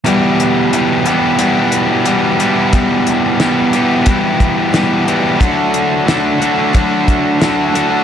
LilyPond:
<<
  \new Staff \with { instrumentName = "Steel-string acoustic guitar" } { \time 4/4 \key e \minor \tempo 4 = 90 <e, b, e g b e'>2 <e g b e'>4 <e g b e'>4 | <e, b, e g b e'>4. <e g b e'>8 <e g b e'>4 <e g b e'>4 | <d fis a d' e'>2 <fis a d' e'>4 <fis a d' e'>4 | }
  \new Staff \with { instrumentName = "Distorted electric guitar" } { \clef bass \time 4/4 \key e \minor <e, b, e g b e'>4 <e, b, e g b e'>8 <e, b, e g b e'>8 <e, b, e g b e'>4 <e, b, e g b e'>8 <e, b, e g b e'>8 | <e, b, e g b e'>4 <e, b, e g b e'>8 <e, b, e g b e'>8 <e, b, e g b e'>4 <e, b, e g b e'>8 <e, b, e g b e'>8 | <d a d' fis'>4 <d a d' fis'>8 <d a d' fis'>8 <d a d' fis'>4 <d a d' fis'>8 <d a d' fis'>8 | }
  \new Staff \with { instrumentName = "Overdriven electric guitar" } { \clef bass \time 4/4 \key e \minor <e, b, e g b g'>4 <e, b, e g b g'>8 <e, b, e g b g'>8 <e, b, e g b g'>4 <e, b, e g b g'>8 <e, b, e g b g'>8 | <e, b, e g b g'>4 <e, b, e g b g'>8 <e, b, e g b g'>8 <e, b, e g b g'>4 <e, b, e g b g'>8 <e, b, e g b g'>8 | <d a d' fis'>4 <d a d' fis'>8 <d a d' fis'>8 <d a d' fis'>4 <d a d' fis'>8 <d a d' fis'>8 | }
  \new DrumStaff \with { instrumentName = "Drums" } \drummode { \time 4/4 hh8 hh8 hh8 hh8 hh8 hh8 hh8 hh8 | <hh bd>8 hh8 <hh sn>8 hh8 <hh bd>8 <hh bd>8 <hh sn>8 hh8 | <hh bd>8 hh8 <hh sn>8 hh8 <hh bd>8 <hh bd>8 <hh sn>8 hh8 | }
>>